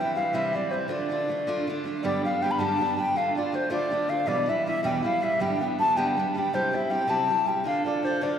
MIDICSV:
0, 0, Header, 1, 3, 480
1, 0, Start_track
1, 0, Tempo, 375469
1, 1154, Time_signature, 6, 3, 24, 8
1, 10723, End_track
2, 0, Start_track
2, 0, Title_t, "Flute"
2, 0, Program_c, 0, 73
2, 0, Note_on_c, 0, 79, 81
2, 182, Note_off_c, 0, 79, 0
2, 198, Note_on_c, 0, 77, 89
2, 430, Note_on_c, 0, 76, 77
2, 449, Note_off_c, 0, 77, 0
2, 707, Note_on_c, 0, 74, 86
2, 726, Note_off_c, 0, 76, 0
2, 910, Note_on_c, 0, 72, 70
2, 929, Note_off_c, 0, 74, 0
2, 1147, Note_off_c, 0, 72, 0
2, 1162, Note_on_c, 0, 74, 78
2, 2089, Note_off_c, 0, 74, 0
2, 2601, Note_on_c, 0, 74, 96
2, 2842, Note_off_c, 0, 74, 0
2, 2876, Note_on_c, 0, 77, 83
2, 3097, Note_on_c, 0, 79, 110
2, 3116, Note_off_c, 0, 77, 0
2, 3210, Note_on_c, 0, 83, 61
2, 3229, Note_off_c, 0, 79, 0
2, 3314, Note_on_c, 0, 81, 92
2, 3333, Note_off_c, 0, 83, 0
2, 3805, Note_off_c, 0, 81, 0
2, 3818, Note_on_c, 0, 79, 92
2, 4052, Note_on_c, 0, 77, 92
2, 4071, Note_off_c, 0, 79, 0
2, 4301, Note_off_c, 0, 77, 0
2, 4308, Note_on_c, 0, 74, 76
2, 4540, Note_on_c, 0, 72, 94
2, 4559, Note_off_c, 0, 74, 0
2, 4761, Note_off_c, 0, 72, 0
2, 4767, Note_on_c, 0, 74, 92
2, 5236, Note_on_c, 0, 77, 91
2, 5255, Note_off_c, 0, 74, 0
2, 5468, Note_on_c, 0, 74, 103
2, 5488, Note_off_c, 0, 77, 0
2, 5741, Note_on_c, 0, 76, 84
2, 5760, Note_off_c, 0, 74, 0
2, 5967, Note_off_c, 0, 76, 0
2, 5972, Note_on_c, 0, 76, 108
2, 6181, Note_off_c, 0, 76, 0
2, 6192, Note_on_c, 0, 79, 82
2, 6435, Note_off_c, 0, 79, 0
2, 6461, Note_on_c, 0, 77, 104
2, 6687, Note_on_c, 0, 76, 90
2, 6706, Note_off_c, 0, 77, 0
2, 6917, Note_on_c, 0, 79, 92
2, 6936, Note_off_c, 0, 76, 0
2, 7170, Note_off_c, 0, 79, 0
2, 7178, Note_on_c, 0, 79, 74
2, 7254, Note_off_c, 0, 79, 0
2, 7409, Note_on_c, 0, 81, 114
2, 7628, Note_on_c, 0, 79, 94
2, 7647, Note_off_c, 0, 81, 0
2, 8121, Note_off_c, 0, 79, 0
2, 8141, Note_on_c, 0, 79, 80
2, 8364, Note_on_c, 0, 72, 88
2, 8383, Note_off_c, 0, 79, 0
2, 8627, Note_on_c, 0, 76, 82
2, 8646, Note_off_c, 0, 72, 0
2, 8832, Note_on_c, 0, 79, 95
2, 8851, Note_off_c, 0, 76, 0
2, 9076, Note_on_c, 0, 81, 86
2, 9095, Note_off_c, 0, 79, 0
2, 9564, Note_on_c, 0, 79, 83
2, 9583, Note_off_c, 0, 81, 0
2, 9793, Note_off_c, 0, 79, 0
2, 9803, Note_on_c, 0, 77, 87
2, 10042, Note_off_c, 0, 77, 0
2, 10050, Note_on_c, 0, 74, 78
2, 10287, Note_on_c, 0, 72, 89
2, 10306, Note_off_c, 0, 74, 0
2, 10519, Note_on_c, 0, 74, 81
2, 10538, Note_off_c, 0, 72, 0
2, 10723, Note_off_c, 0, 74, 0
2, 10723, End_track
3, 0, Start_track
3, 0, Title_t, "Steel-string acoustic guitar"
3, 0, Program_c, 1, 25
3, 0, Note_on_c, 1, 52, 54
3, 0, Note_on_c, 1, 55, 55
3, 5, Note_on_c, 1, 60, 53
3, 10, Note_on_c, 1, 64, 63
3, 178, Note_off_c, 1, 52, 0
3, 186, Note_off_c, 1, 55, 0
3, 193, Note_on_c, 1, 52, 52
3, 200, Note_off_c, 1, 60, 0
3, 201, Note_on_c, 1, 55, 56
3, 215, Note_off_c, 1, 64, 0
3, 215, Note_on_c, 1, 60, 67
3, 231, Note_on_c, 1, 64, 62
3, 418, Note_off_c, 1, 52, 0
3, 424, Note_on_c, 1, 48, 71
3, 426, Note_off_c, 1, 55, 0
3, 429, Note_off_c, 1, 60, 0
3, 433, Note_on_c, 1, 52, 69
3, 434, Note_off_c, 1, 64, 0
3, 442, Note_on_c, 1, 55, 79
3, 445, Note_on_c, 1, 60, 82
3, 449, Note_on_c, 1, 64, 81
3, 660, Note_off_c, 1, 52, 0
3, 675, Note_on_c, 1, 52, 53
3, 679, Note_off_c, 1, 55, 0
3, 691, Note_off_c, 1, 48, 0
3, 693, Note_off_c, 1, 60, 0
3, 694, Note_on_c, 1, 55, 53
3, 704, Note_off_c, 1, 64, 0
3, 708, Note_on_c, 1, 60, 62
3, 722, Note_on_c, 1, 64, 60
3, 880, Note_off_c, 1, 52, 0
3, 895, Note_on_c, 1, 52, 48
3, 899, Note_off_c, 1, 55, 0
3, 913, Note_off_c, 1, 60, 0
3, 914, Note_on_c, 1, 55, 54
3, 928, Note_off_c, 1, 64, 0
3, 929, Note_on_c, 1, 60, 60
3, 943, Note_on_c, 1, 64, 66
3, 1118, Note_off_c, 1, 52, 0
3, 1123, Note_on_c, 1, 50, 66
3, 1133, Note_off_c, 1, 55, 0
3, 1133, Note_off_c, 1, 60, 0
3, 1138, Note_on_c, 1, 57, 62
3, 1138, Note_on_c, 1, 62, 78
3, 1152, Note_off_c, 1, 64, 0
3, 1157, Note_on_c, 1, 65, 77
3, 1378, Note_off_c, 1, 50, 0
3, 1393, Note_on_c, 1, 50, 57
3, 1395, Note_off_c, 1, 57, 0
3, 1405, Note_off_c, 1, 62, 0
3, 1410, Note_on_c, 1, 57, 57
3, 1415, Note_off_c, 1, 65, 0
3, 1421, Note_on_c, 1, 62, 62
3, 1430, Note_on_c, 1, 65, 62
3, 1624, Note_off_c, 1, 50, 0
3, 1638, Note_off_c, 1, 57, 0
3, 1639, Note_on_c, 1, 50, 53
3, 1648, Note_off_c, 1, 62, 0
3, 1653, Note_off_c, 1, 65, 0
3, 1653, Note_on_c, 1, 57, 62
3, 1665, Note_on_c, 1, 62, 53
3, 1678, Note_on_c, 1, 65, 57
3, 1863, Note_off_c, 1, 50, 0
3, 1874, Note_off_c, 1, 57, 0
3, 1878, Note_on_c, 1, 50, 84
3, 1881, Note_off_c, 1, 62, 0
3, 1886, Note_off_c, 1, 65, 0
3, 1890, Note_on_c, 1, 57, 80
3, 1897, Note_on_c, 1, 62, 83
3, 1901, Note_on_c, 1, 65, 86
3, 2122, Note_off_c, 1, 50, 0
3, 2129, Note_off_c, 1, 57, 0
3, 2137, Note_on_c, 1, 50, 69
3, 2145, Note_on_c, 1, 57, 64
3, 2148, Note_off_c, 1, 62, 0
3, 2150, Note_off_c, 1, 65, 0
3, 2167, Note_on_c, 1, 62, 71
3, 2178, Note_on_c, 1, 65, 62
3, 2336, Note_off_c, 1, 50, 0
3, 2351, Note_on_c, 1, 50, 54
3, 2353, Note_off_c, 1, 57, 0
3, 2366, Note_off_c, 1, 62, 0
3, 2368, Note_on_c, 1, 57, 59
3, 2380, Note_off_c, 1, 65, 0
3, 2381, Note_on_c, 1, 62, 66
3, 2396, Note_on_c, 1, 65, 64
3, 2587, Note_off_c, 1, 50, 0
3, 2592, Note_on_c, 1, 43, 65
3, 2596, Note_off_c, 1, 57, 0
3, 2602, Note_on_c, 1, 50, 71
3, 2603, Note_off_c, 1, 62, 0
3, 2610, Note_off_c, 1, 65, 0
3, 2610, Note_on_c, 1, 59, 64
3, 2613, Note_on_c, 1, 55, 76
3, 2618, Note_on_c, 1, 62, 68
3, 2618, Note_on_c, 1, 67, 79
3, 2855, Note_off_c, 1, 43, 0
3, 2856, Note_off_c, 1, 55, 0
3, 2861, Note_off_c, 1, 50, 0
3, 2865, Note_off_c, 1, 59, 0
3, 2869, Note_off_c, 1, 62, 0
3, 2869, Note_off_c, 1, 67, 0
3, 2871, Note_on_c, 1, 55, 54
3, 2879, Note_on_c, 1, 59, 57
3, 2895, Note_on_c, 1, 62, 66
3, 2909, Note_on_c, 1, 67, 60
3, 3083, Note_off_c, 1, 55, 0
3, 3097, Note_off_c, 1, 59, 0
3, 3098, Note_on_c, 1, 55, 66
3, 3105, Note_off_c, 1, 62, 0
3, 3112, Note_off_c, 1, 67, 0
3, 3114, Note_on_c, 1, 59, 59
3, 3122, Note_on_c, 1, 62, 60
3, 3137, Note_on_c, 1, 67, 60
3, 3303, Note_on_c, 1, 43, 71
3, 3306, Note_off_c, 1, 55, 0
3, 3306, Note_on_c, 1, 50, 63
3, 3310, Note_off_c, 1, 62, 0
3, 3311, Note_off_c, 1, 59, 0
3, 3318, Note_off_c, 1, 67, 0
3, 3321, Note_on_c, 1, 55, 79
3, 3326, Note_on_c, 1, 62, 84
3, 3327, Note_on_c, 1, 59, 70
3, 3333, Note_on_c, 1, 67, 85
3, 3544, Note_off_c, 1, 55, 0
3, 3560, Note_on_c, 1, 55, 58
3, 3561, Note_off_c, 1, 59, 0
3, 3571, Note_off_c, 1, 43, 0
3, 3572, Note_off_c, 1, 50, 0
3, 3577, Note_on_c, 1, 59, 52
3, 3579, Note_off_c, 1, 62, 0
3, 3586, Note_off_c, 1, 67, 0
3, 3595, Note_on_c, 1, 62, 60
3, 3602, Note_on_c, 1, 67, 62
3, 3776, Note_off_c, 1, 55, 0
3, 3792, Note_on_c, 1, 55, 62
3, 3793, Note_off_c, 1, 59, 0
3, 3802, Note_off_c, 1, 62, 0
3, 3808, Note_on_c, 1, 59, 61
3, 3813, Note_off_c, 1, 67, 0
3, 3817, Note_on_c, 1, 62, 53
3, 3828, Note_on_c, 1, 67, 61
3, 4027, Note_off_c, 1, 55, 0
3, 4035, Note_on_c, 1, 50, 61
3, 4036, Note_off_c, 1, 59, 0
3, 4040, Note_off_c, 1, 62, 0
3, 4043, Note_on_c, 1, 57, 63
3, 4046, Note_off_c, 1, 67, 0
3, 4054, Note_on_c, 1, 62, 66
3, 4067, Note_on_c, 1, 65, 75
3, 4268, Note_off_c, 1, 50, 0
3, 4283, Note_on_c, 1, 50, 53
3, 4289, Note_off_c, 1, 57, 0
3, 4297, Note_off_c, 1, 62, 0
3, 4304, Note_on_c, 1, 57, 51
3, 4308, Note_off_c, 1, 65, 0
3, 4312, Note_on_c, 1, 62, 58
3, 4323, Note_on_c, 1, 65, 67
3, 4486, Note_off_c, 1, 50, 0
3, 4502, Note_on_c, 1, 50, 59
3, 4507, Note_off_c, 1, 57, 0
3, 4514, Note_off_c, 1, 62, 0
3, 4522, Note_on_c, 1, 57, 66
3, 4530, Note_on_c, 1, 62, 61
3, 4532, Note_off_c, 1, 65, 0
3, 4547, Note_on_c, 1, 65, 55
3, 4710, Note_off_c, 1, 50, 0
3, 4720, Note_off_c, 1, 57, 0
3, 4726, Note_on_c, 1, 50, 84
3, 4731, Note_off_c, 1, 62, 0
3, 4735, Note_on_c, 1, 57, 84
3, 4736, Note_off_c, 1, 65, 0
3, 4746, Note_on_c, 1, 62, 79
3, 4751, Note_on_c, 1, 65, 85
3, 4973, Note_off_c, 1, 50, 0
3, 4989, Note_off_c, 1, 57, 0
3, 4989, Note_on_c, 1, 50, 54
3, 5004, Note_off_c, 1, 62, 0
3, 5005, Note_on_c, 1, 57, 64
3, 5014, Note_off_c, 1, 65, 0
3, 5019, Note_on_c, 1, 62, 62
3, 5029, Note_on_c, 1, 65, 64
3, 5209, Note_off_c, 1, 50, 0
3, 5223, Note_off_c, 1, 57, 0
3, 5224, Note_on_c, 1, 50, 57
3, 5238, Note_off_c, 1, 62, 0
3, 5238, Note_on_c, 1, 57, 58
3, 5251, Note_off_c, 1, 65, 0
3, 5253, Note_on_c, 1, 62, 62
3, 5264, Note_on_c, 1, 65, 51
3, 5443, Note_on_c, 1, 40, 73
3, 5451, Note_off_c, 1, 50, 0
3, 5453, Note_on_c, 1, 47, 70
3, 5457, Note_on_c, 1, 52, 65
3, 5460, Note_off_c, 1, 57, 0
3, 5466, Note_on_c, 1, 55, 65
3, 5468, Note_off_c, 1, 62, 0
3, 5473, Note_on_c, 1, 59, 78
3, 5474, Note_off_c, 1, 65, 0
3, 5479, Note_on_c, 1, 64, 68
3, 5686, Note_off_c, 1, 52, 0
3, 5701, Note_on_c, 1, 52, 68
3, 5702, Note_off_c, 1, 55, 0
3, 5718, Note_off_c, 1, 59, 0
3, 5718, Note_on_c, 1, 55, 62
3, 5720, Note_off_c, 1, 40, 0
3, 5725, Note_off_c, 1, 47, 0
3, 5731, Note_off_c, 1, 64, 0
3, 5733, Note_on_c, 1, 59, 56
3, 5747, Note_on_c, 1, 64, 70
3, 5942, Note_off_c, 1, 52, 0
3, 5955, Note_off_c, 1, 55, 0
3, 5957, Note_on_c, 1, 52, 60
3, 5963, Note_off_c, 1, 59, 0
3, 5969, Note_off_c, 1, 64, 0
3, 5972, Note_on_c, 1, 55, 58
3, 5981, Note_on_c, 1, 59, 61
3, 5995, Note_on_c, 1, 64, 60
3, 6171, Note_off_c, 1, 52, 0
3, 6173, Note_off_c, 1, 55, 0
3, 6173, Note_on_c, 1, 40, 72
3, 6181, Note_on_c, 1, 47, 63
3, 6182, Note_off_c, 1, 59, 0
3, 6187, Note_on_c, 1, 52, 75
3, 6188, Note_on_c, 1, 55, 83
3, 6192, Note_off_c, 1, 64, 0
3, 6197, Note_on_c, 1, 59, 82
3, 6207, Note_on_c, 1, 64, 78
3, 6409, Note_off_c, 1, 52, 0
3, 6424, Note_on_c, 1, 52, 64
3, 6426, Note_off_c, 1, 55, 0
3, 6434, Note_off_c, 1, 59, 0
3, 6441, Note_on_c, 1, 55, 59
3, 6444, Note_off_c, 1, 40, 0
3, 6448, Note_off_c, 1, 47, 0
3, 6449, Note_on_c, 1, 59, 61
3, 6451, Note_off_c, 1, 64, 0
3, 6466, Note_on_c, 1, 64, 62
3, 6639, Note_off_c, 1, 52, 0
3, 6654, Note_off_c, 1, 55, 0
3, 6654, Note_on_c, 1, 52, 57
3, 6669, Note_on_c, 1, 55, 60
3, 6672, Note_off_c, 1, 59, 0
3, 6675, Note_off_c, 1, 64, 0
3, 6688, Note_on_c, 1, 59, 51
3, 6691, Note_on_c, 1, 64, 62
3, 6891, Note_off_c, 1, 55, 0
3, 6894, Note_on_c, 1, 43, 72
3, 6897, Note_off_c, 1, 52, 0
3, 6900, Note_off_c, 1, 59, 0
3, 6904, Note_on_c, 1, 50, 64
3, 6906, Note_on_c, 1, 55, 70
3, 6916, Note_off_c, 1, 64, 0
3, 6916, Note_on_c, 1, 59, 71
3, 6923, Note_on_c, 1, 62, 67
3, 6923, Note_on_c, 1, 67, 82
3, 7131, Note_off_c, 1, 55, 0
3, 7146, Note_on_c, 1, 55, 53
3, 7150, Note_off_c, 1, 59, 0
3, 7163, Note_off_c, 1, 62, 0
3, 7165, Note_off_c, 1, 43, 0
3, 7165, Note_on_c, 1, 59, 54
3, 7170, Note_off_c, 1, 50, 0
3, 7179, Note_off_c, 1, 67, 0
3, 7179, Note_on_c, 1, 62, 56
3, 7194, Note_on_c, 1, 67, 54
3, 7379, Note_off_c, 1, 55, 0
3, 7395, Note_off_c, 1, 59, 0
3, 7395, Note_on_c, 1, 55, 55
3, 7405, Note_off_c, 1, 62, 0
3, 7411, Note_on_c, 1, 59, 58
3, 7413, Note_off_c, 1, 67, 0
3, 7421, Note_on_c, 1, 62, 58
3, 7435, Note_on_c, 1, 67, 67
3, 7619, Note_off_c, 1, 55, 0
3, 7622, Note_off_c, 1, 59, 0
3, 7625, Note_on_c, 1, 43, 67
3, 7631, Note_off_c, 1, 62, 0
3, 7631, Note_on_c, 1, 50, 72
3, 7635, Note_off_c, 1, 67, 0
3, 7635, Note_on_c, 1, 55, 79
3, 7637, Note_on_c, 1, 59, 89
3, 7646, Note_on_c, 1, 62, 84
3, 7650, Note_on_c, 1, 67, 71
3, 7871, Note_off_c, 1, 55, 0
3, 7882, Note_off_c, 1, 59, 0
3, 7886, Note_on_c, 1, 55, 59
3, 7890, Note_off_c, 1, 43, 0
3, 7893, Note_off_c, 1, 50, 0
3, 7898, Note_on_c, 1, 59, 56
3, 7901, Note_off_c, 1, 62, 0
3, 7903, Note_off_c, 1, 67, 0
3, 7916, Note_on_c, 1, 62, 66
3, 7920, Note_on_c, 1, 67, 66
3, 8093, Note_off_c, 1, 55, 0
3, 8107, Note_off_c, 1, 59, 0
3, 8109, Note_on_c, 1, 55, 59
3, 8123, Note_on_c, 1, 59, 61
3, 8126, Note_off_c, 1, 62, 0
3, 8136, Note_off_c, 1, 67, 0
3, 8141, Note_on_c, 1, 62, 62
3, 8157, Note_on_c, 1, 67, 66
3, 8344, Note_off_c, 1, 55, 0
3, 8350, Note_on_c, 1, 48, 68
3, 8351, Note_off_c, 1, 59, 0
3, 8360, Note_off_c, 1, 67, 0
3, 8360, Note_on_c, 1, 55, 72
3, 8361, Note_off_c, 1, 62, 0
3, 8366, Note_on_c, 1, 60, 59
3, 8375, Note_on_c, 1, 67, 79
3, 8376, Note_on_c, 1, 64, 78
3, 8572, Note_off_c, 1, 55, 0
3, 8587, Note_on_c, 1, 55, 49
3, 8591, Note_off_c, 1, 60, 0
3, 8602, Note_off_c, 1, 64, 0
3, 8606, Note_on_c, 1, 60, 58
3, 8613, Note_off_c, 1, 48, 0
3, 8613, Note_off_c, 1, 67, 0
3, 8617, Note_on_c, 1, 64, 56
3, 8628, Note_on_c, 1, 67, 58
3, 8802, Note_off_c, 1, 55, 0
3, 8817, Note_on_c, 1, 55, 61
3, 8820, Note_off_c, 1, 60, 0
3, 8835, Note_off_c, 1, 64, 0
3, 8835, Note_on_c, 1, 60, 58
3, 8847, Note_off_c, 1, 67, 0
3, 8850, Note_on_c, 1, 64, 52
3, 8862, Note_on_c, 1, 67, 60
3, 9035, Note_off_c, 1, 55, 0
3, 9042, Note_on_c, 1, 48, 80
3, 9046, Note_off_c, 1, 60, 0
3, 9048, Note_off_c, 1, 64, 0
3, 9050, Note_on_c, 1, 55, 71
3, 9054, Note_off_c, 1, 67, 0
3, 9061, Note_on_c, 1, 60, 66
3, 9063, Note_on_c, 1, 64, 79
3, 9069, Note_on_c, 1, 67, 75
3, 9299, Note_off_c, 1, 55, 0
3, 9314, Note_on_c, 1, 55, 52
3, 9319, Note_off_c, 1, 48, 0
3, 9322, Note_off_c, 1, 60, 0
3, 9329, Note_off_c, 1, 64, 0
3, 9333, Note_off_c, 1, 67, 0
3, 9337, Note_on_c, 1, 60, 56
3, 9345, Note_on_c, 1, 64, 57
3, 9360, Note_on_c, 1, 67, 63
3, 9514, Note_off_c, 1, 55, 0
3, 9525, Note_off_c, 1, 60, 0
3, 9530, Note_on_c, 1, 55, 55
3, 9538, Note_off_c, 1, 64, 0
3, 9540, Note_on_c, 1, 60, 56
3, 9554, Note_on_c, 1, 64, 53
3, 9558, Note_off_c, 1, 67, 0
3, 9574, Note_on_c, 1, 67, 63
3, 9760, Note_off_c, 1, 55, 0
3, 9765, Note_on_c, 1, 50, 69
3, 9778, Note_off_c, 1, 60, 0
3, 9783, Note_on_c, 1, 62, 68
3, 9787, Note_off_c, 1, 64, 0
3, 9792, Note_on_c, 1, 65, 76
3, 9794, Note_off_c, 1, 67, 0
3, 9799, Note_on_c, 1, 69, 81
3, 10007, Note_off_c, 1, 50, 0
3, 10022, Note_off_c, 1, 62, 0
3, 10023, Note_on_c, 1, 50, 56
3, 10035, Note_off_c, 1, 65, 0
3, 10038, Note_on_c, 1, 62, 52
3, 10050, Note_off_c, 1, 69, 0
3, 10051, Note_on_c, 1, 65, 68
3, 10065, Note_on_c, 1, 69, 60
3, 10247, Note_off_c, 1, 50, 0
3, 10261, Note_off_c, 1, 62, 0
3, 10262, Note_on_c, 1, 50, 55
3, 10275, Note_off_c, 1, 65, 0
3, 10277, Note_on_c, 1, 62, 51
3, 10289, Note_off_c, 1, 69, 0
3, 10290, Note_on_c, 1, 65, 66
3, 10307, Note_on_c, 1, 69, 61
3, 10483, Note_off_c, 1, 50, 0
3, 10492, Note_off_c, 1, 62, 0
3, 10499, Note_on_c, 1, 50, 84
3, 10506, Note_off_c, 1, 65, 0
3, 10507, Note_off_c, 1, 69, 0
3, 10507, Note_on_c, 1, 62, 71
3, 10521, Note_on_c, 1, 65, 73
3, 10522, Note_on_c, 1, 69, 75
3, 10722, Note_off_c, 1, 50, 0
3, 10723, Note_off_c, 1, 62, 0
3, 10723, Note_off_c, 1, 65, 0
3, 10723, Note_off_c, 1, 69, 0
3, 10723, End_track
0, 0, End_of_file